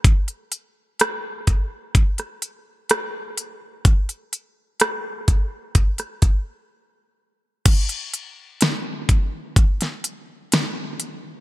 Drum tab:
CC |----------------|----------------|x---------------|
HH |xxx-x-x-xxx-x-x-|xxx-x-x-xxx-----|xxx-x-x-xxx-x-x-|
SD |----r----r--r---|----r----r------|----o----o--o---|
BD |o-----o-o-------|o-----o-o-o-----|o-----o-o-------|